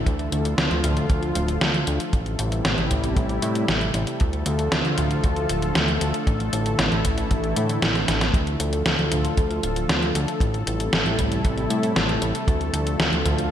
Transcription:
Already playing: D3 A3 A4
0.06 D2 F3 F4, kick, closed hi-hat
0.19 closed hi-hat
0.32 D2, closed hi-hat
0.45 closed hi-hat
0.58 D2, snare, closed hi-hat
0.71 D2, closed hi-hat
0.84 D2, closed hi-hat, mid tom
0.97 closed hi-hat
1.10 D2, kick, closed hi-hat
1.23 closed hi-hat
1.35 D1, closed hi-hat
1.48 closed hi-hat
1.61 D2, snare, closed hi-hat
1.74 closed hi-hat
1.87 D2, closed hi-hat
2.00 closed hi-hat
2.13 A1 C3 G3 E4, kick, closed hi-hat
2.26 closed hi-hat
2.39 A1, closed hi-hat
2.52 closed hi-hat
2.65 A1, snare, closed hi-hat
2.78 A1, closed hi-hat
2.91 A1, kick, closed hi-hat, mid tom
3.04 closed hi-hat
3.16 A1, kick, closed hi-hat
3.29 closed hi-hat
3.42 A2, closed hi-hat
3.55 closed hi-hat
3.68 A1, snare, closed hi-hat
3.81 closed hi-hat
3.94 A1, closed hi-hat
4.07 closed hi-hat
4.20 D2 D3 F3 A3 F4 A4, kick, closed hi-hat
4.33 closed hi-hat
4.46 D2, closed hi-hat
4.59 closed hi-hat
4.72 D2, snare, closed hi-hat
4.85 D2, closed hi-hat
4.98 D2, closed hi-hat, mid tom
5.11 closed hi-hat
5.24 D2, kick, closed hi-hat
5.36 closed hi-hat
5.49 D1, closed hi-hat
5.62 closed hi-hat
5.75 D2, snare, closed hi-hat
5.88 closed hi-hat
6.01 D2, closed hi-hat
6.14 closed hi-hat
6.27 A1 E3 E4, kick, closed hi-hat
6.40 closed hi-hat
6.53 A1, closed hi-hat
6.66 closed hi-hat
6.79 A1, snare, closed hi-hat
6.92 A1, closed hi-hat
7.05 A1, kick, closed hi-hat, mid tom
7.18 closed hi-hat
7.31 A1, kick, closed hi-hat
7.44 closed hi-hat
7.56 A2, closed hi-hat
7.69 closed hi-hat
7.82 A1, snare, closed hi-hat
7.95 snare, closed hi-hat
8.08 A1, snare, closed hi-hat
8.21 snare, closed hi-hat
8.34 D2 F3 F4 A4, kick, closed hi-hat
8.47 closed hi-hat
8.60 D2, closed hi-hat
8.73 closed hi-hat
8.86 D2, snare, closed hi-hat
8.99 D2, closed hi-hat
9.12 D2, closed hi-hat, mid tom
9.25 closed hi-hat
9.37 D2, kick, closed hi-hat
9.51 closed hi-hat
9.63 D1, closed hi-hat
9.76 closed hi-hat
9.89 D2, snare, closed hi-hat
10.02 closed hi-hat
10.15 D2, closed hi-hat
10.28 closed hi-hat
10.40 A1 C3 G3 A3 E4, kick, closed hi-hat
10.54 closed hi-hat
10.67 A1, closed hi-hat
10.80 closed hi-hat
10.92 A1, snare, closed hi-hat
11.05 A1, closed hi-hat
11.19 A1, kick, closed hi-hat, mid tom
11.32 closed hi-hat
11.45 A1, kick, closed hi-hat
11.58 closed hi-hat
11.70 A2, closed hi-hat
11.83 closed hi-hat
11.96 A1, snare, closed hi-hat
12.09 closed hi-hat
12.22 A1, closed hi-hat
12.35 closed hi-hat
12.48 D2 D3 F3 F4, kick, closed hi-hat
12.61 closed hi-hat
12.73 D2, closed hi-hat
12.87 closed hi-hat
12.99 D2, snare, closed hi-hat
13.12 D2, closed hi-hat
13.25 D2, closed hi-hat, mid tom
13.38 closed hi-hat

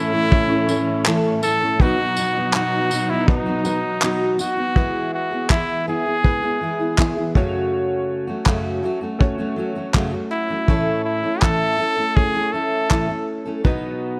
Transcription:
Already playing: A2 E3 A3 C#4 E4 A4
0.13 A3 C#4 E4 A4
0.31 C#4 E4 A4, kick
0.50 A3 C#4 E4 A4
0.68 A3 C#4 E4 A4, tambourine
1.06 A2 E3 A3 C#4 E4 A4, clap
1.43 A3 C#4 E4 A4, tambourine
1.61 A3 C#4 E4 A4
1.80 B2 F#3 B3 D#4 F#4 B4, kick
1.98 B3 D#4 F#4
2.17 F#3 B3 D#4 F#4, tambourine
2.36 B3 D#4 F#4
2.53 B2 F#3 B3 D#4 F#4, clap
2.91 F#3 B3 D#4 F#4, tambourine
3.09 B3 D#4 E4 F#4
3.27 D#4 F#4 B4, kick
3.46 B3 D#4 F#4
3.64 F#3 B3 D#4 F#4 B4, tambourine
4.02 B2 F#3 B3 D#4 F#4, clap
4.38 F#3 B3 D#4 F#4, tambourine
4.56 B3 D#4 F#4
4.75 E3 G#3 B3 E4 G#4 B4, kick
5.14 F#4
5.31 B3 E4 G#4
5.50 E3 B3 E4 G#4, kick, clap
5.87 E3 B3 E4 G#4
6.06 B3 E4 G#4
6.23 G#3 B3 E4 B4, kick
6.42 B3 E4 G#4
6.61 E3 B3 E4 G#4
6.79 B3 E4 G#4
6.98 E3 B3 E4 G#4, kick, clap
7.17 B3 E4 G#4
7.35 F#2 C#3 F#3 A3 C#4 F#4 C#5, kick
8.27 F#3 A3 C#4 F#4
8.46 F#2 C#3 F#3 A3 C#4 F#4, kick, clap
8.83 F#3 A3 C#4 F#4
9.01 F#3 A3 C#4 F#4
9.19 A3 C#4 F#4 C#5, kick
9.38 F#3 A3 C#4 F#4
9.56 F#3 A3 C#4 F#4
9.75 F#3 A3 C#4 F#4
9.94 F#2 C#3 F#3 A3 C#4 F#4, kick, clap
10.13 F#3 A3 C#4 F#4
10.31 E4
10.49 F#3 A3 C#4 F#4
10.67 A2 E3 A3 C#4 E4 A4 C#5, kick
11.04 E4
11.23 A3 C#4 E4 A4
11.41 A2 E3 A3 C#4 E4 A4, kick, clap
11.78 A3 C#4 E4 A4
11.96 A3 C#4 E4 A4
12.15 A3 C#4 E4 G#4 C#5, kick
12.34 A3 C#4 E4 A4
12.53 A3 C#4 E4 A4
12.90 A2 E3 A3 C#4 E4 A4, kick, clap
13.08 A3 C#4 E4 A4
13.45 A3 C#4 E4 A4
13.64 B2 F#3 B3 D#4 F#4 B4 D#5, kick

